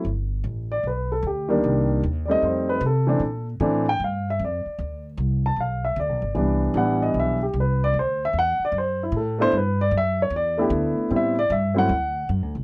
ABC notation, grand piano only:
X:1
M:4/4
L:1/8
Q:"Swing" 1/4=152
K:G
V:1 name="Grand piano"
z3 d B A G2- | G z2 [d_e] c B A2- | A z2 g =f e d2- | d z2 a =f e d2- |
d z f _e =e G B d | c e f d c E A c | B d e ^c d G z2 | e d e f3 z2 |]
V:2 name="Grand piano"
z6 z [_E,G,_B,D]- | [_E,G,_B,D]2 z [G,A,C_E]3 z [=E,A,CD] | z2 [E,A,CD] z4 z | z8 |
[E,G,B,D]2 [E,G,B,D]3 z3 | z6 z [A,B,DE] | z4 z [A,B,DE]3 | [G,B,CE] z2 [F,A,CE] z4 |]